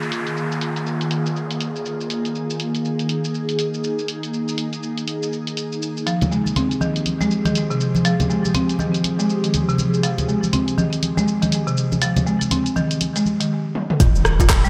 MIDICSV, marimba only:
0, 0, Header, 1, 2, 480
1, 0, Start_track
1, 0, Key_signature, -4, "minor"
1, 0, Tempo, 495868
1, 112, Time_signature, 4, 2, 24, 8
1, 14224, End_track
2, 0, Start_track
2, 0, Title_t, "Marimba"
2, 0, Program_c, 0, 12
2, 5872, Note_on_c, 0, 53, 85
2, 6002, Note_off_c, 0, 53, 0
2, 6113, Note_on_c, 0, 56, 69
2, 6242, Note_off_c, 0, 56, 0
2, 6353, Note_on_c, 0, 60, 77
2, 6490, Note_off_c, 0, 60, 0
2, 6593, Note_on_c, 0, 51, 72
2, 6730, Note_off_c, 0, 51, 0
2, 6976, Note_on_c, 0, 56, 92
2, 7063, Note_off_c, 0, 56, 0
2, 7216, Note_on_c, 0, 51, 69
2, 7268, Note_off_c, 0, 51, 0
2, 7457, Note_on_c, 0, 48, 72
2, 7543, Note_off_c, 0, 48, 0
2, 7793, Note_on_c, 0, 53, 92
2, 7922, Note_off_c, 0, 53, 0
2, 8032, Note_on_c, 0, 56, 72
2, 8162, Note_off_c, 0, 56, 0
2, 8273, Note_on_c, 0, 60, 81
2, 8409, Note_off_c, 0, 60, 0
2, 8513, Note_on_c, 0, 51, 67
2, 8650, Note_off_c, 0, 51, 0
2, 8897, Note_on_c, 0, 56, 91
2, 8983, Note_off_c, 0, 56, 0
2, 9137, Note_on_c, 0, 51, 66
2, 9189, Note_off_c, 0, 51, 0
2, 9377, Note_on_c, 0, 48, 74
2, 9463, Note_off_c, 0, 48, 0
2, 9713, Note_on_c, 0, 53, 93
2, 9842, Note_off_c, 0, 53, 0
2, 9954, Note_on_c, 0, 56, 73
2, 10083, Note_off_c, 0, 56, 0
2, 10193, Note_on_c, 0, 60, 78
2, 10329, Note_off_c, 0, 60, 0
2, 10433, Note_on_c, 0, 51, 70
2, 10569, Note_off_c, 0, 51, 0
2, 10817, Note_on_c, 0, 56, 95
2, 10903, Note_off_c, 0, 56, 0
2, 11056, Note_on_c, 0, 51, 72
2, 11108, Note_off_c, 0, 51, 0
2, 11296, Note_on_c, 0, 48, 75
2, 11383, Note_off_c, 0, 48, 0
2, 11633, Note_on_c, 0, 53, 90
2, 11762, Note_off_c, 0, 53, 0
2, 11872, Note_on_c, 0, 56, 72
2, 12002, Note_off_c, 0, 56, 0
2, 12113, Note_on_c, 0, 60, 78
2, 12249, Note_off_c, 0, 60, 0
2, 12352, Note_on_c, 0, 51, 73
2, 12489, Note_off_c, 0, 51, 0
2, 12737, Note_on_c, 0, 56, 97
2, 12823, Note_off_c, 0, 56, 0
2, 12977, Note_on_c, 0, 51, 68
2, 13028, Note_off_c, 0, 51, 0
2, 13553, Note_on_c, 0, 51, 76
2, 13690, Note_off_c, 0, 51, 0
2, 13937, Note_on_c, 0, 46, 80
2, 13988, Note_off_c, 0, 46, 0
2, 14176, Note_on_c, 0, 55, 108
2, 14224, Note_off_c, 0, 55, 0
2, 14224, End_track
0, 0, End_of_file